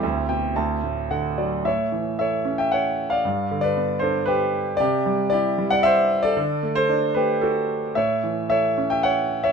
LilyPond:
<<
  \new Staff \with { instrumentName = "Grand piano" } { \time 3/4 \key a \dorian \tempo 4 = 114 << { r8 g''8 a''4 fis''8 d''8 | r2. | r2. | r2. |
r2. | r2. | } \\ { <c' e' g'>2 r4 | <cis'' e''>4 <cis'' e''>8. <e'' g''>16 <cis'' fis''>8. <d'' f''>16~ | <d'' f''>8. <b' d''>8. <a' c''>8 <g' b'>8. r16 | <g' d''>4 <g' d''>8. <d'' fis''>16 <c'' e''>8. <a' d''>16~ |
<a' d''>8. <a' c''>8. <g' b'>8 <fis' a'>8. r16 | <cis'' e''>4 <cis'' e''>8. <e'' g''>16 <cis'' fis''>8. <cis'' e''>16 | } >> }
  \new Staff \with { instrumentName = "Grand piano" } { \clef bass \time 3/4 \key a \dorian d,8 b,8 d,8 a,8 d8 fis8 | a,8 e8 a8 cis'4. | g,8 d8 b8 d'4. | c8 g8 e'8 g4. |
d8 a8 d'8 a4. | a,8 e8 a8 cis'4. | }
>>